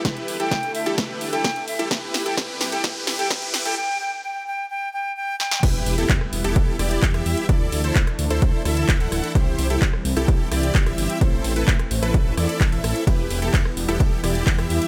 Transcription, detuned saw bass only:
X:1
M:4/4
L:1/16
Q:1/4=129
K:Em
V:1 name="Detuned saw bass" clef=bass
z16 | z16 | z16 | E,,,2 E,,,2 E,, z E,,, E,,, E,,, z E,,,2 E,,2 E,, z |
D,,2 D,,2 D,,, z D,, D,, D,, z D,,2 D,,,2 D,,, z | C,,2 C,,2 G,,, z C,, C,, C,, z C,,2 G,,,2 G,,, z | A,,,2 A,,,2 A,, z A,,, A,,, A,,,2 E,, z A,,,2 A,,, z | E,,,2 E,,,2 E,, z E,,, E,,, E,,, z E,,,2 E,,2 E,, z |]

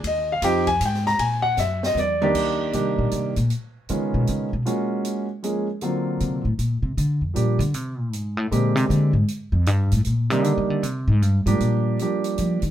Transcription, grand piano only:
X:1
M:3/4
L:1/16
Q:"Swing" 1/4=156
K:Eb
V:1 name="Grand piano"
e2 f2 g2 a2 g2 b2 | a2 ^f2 _f2 e2 d3 z | z12 | z12 |
z12 | z12 | z12 | z12 |
z12 | z12 | z12 |]
V:2 name="Grand piano"
z4 [F,CEG]2 z6 | z8 z2 [E,B,DG]2- | [E,B,DG]4 [E,G,B,DG]6 z2 | z4 [E,A,_C_DF]6 z2 |
[A,B,_DF_G]6 z2 [F,A,B,DA]2 z2 | [D,^F,^A,C^E]6 z6 | z4 [F,G,B,DG]2 z6 | z4 [D,A,B,CG]6 z2 |
z8 z2 [E,G,B,DG]2- | [E,G,B,DG]4 z6 [F,G,B,DG]2- | [F,G,B,DG]4 [F,G,B,DG]6 z2 |]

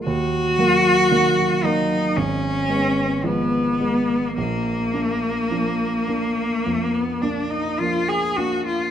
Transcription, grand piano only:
X:1
M:4/4
L:1/8
Q:1/4=53
K:Bbphr
V:1 name="Grand piano"
E,, [G,B,] [E,G,B,] [G,B,] A,,, [A,C] [F,A,C] [A,C] | B,,, [B,=D] [F,B,D] [B,D] F,, [B,D] [F,B,D] [B,D] |]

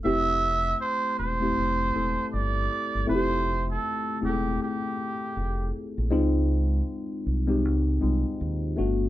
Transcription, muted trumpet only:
X:1
M:4/4
L:1/16
Q:"Swing 16ths" 1/4=79
K:F
V:1 name="Muted trumpet"
e4 c2 c6 d4 | c3 A3 G2 G6 z2 | z16 |]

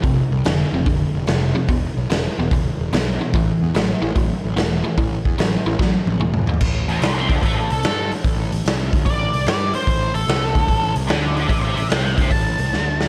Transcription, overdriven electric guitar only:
X:1
M:4/4
L:1/8
Q:"Swing" 1/4=147
K:Am
V:1 name="Overdriven electric guitar" clef=bass
[F,,C,]2 [F,,D,] [F,,C,] [F,,D,]2 [F,,C,] [F,,C,] | [E,,B,,]2 [E,,^C,] [E,,B,,] [E,,C,]2 [E,,B,,] [E,,B,,] | [A,,E,]2 [A,,^F,] [A,,E,] [A,,F,]2 [A,,E,] [A,,E,] | [A,,E,]2 [A,,^F,] [A,,E,] [A,,F,]2 [A,,E,] [A,,E,] |
z8 | z8 | z8 | z8 |]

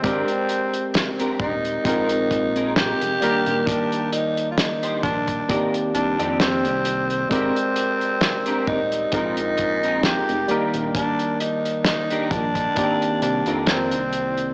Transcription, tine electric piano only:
X:1
M:4/4
L:1/8
Q:"Swing 16ths" 1/4=66
K:Eb
V:1 name="Tine electric piano"
[A,CGBd]4 [A,CEFB]3 [E,G,B,Bd]- | [E,G,B,Bd]4 [E,B,CGd]4 | [A,CGBd]4 [A,CEFB]3 [E,G,B,Bd]- | [E,G,B,Bd]4 [E,B,CGd]4 |]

